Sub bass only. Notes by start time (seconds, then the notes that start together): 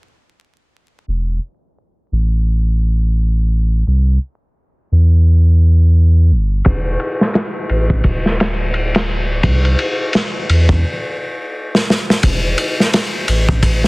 1.08 E1
2.12 A1
3.87 C2
4.92 E2
6.31 G1
6.66 E1
7.70 A1
8.05 D1
9.44 C2
10.49 E2
12.23 E1
13.29 A1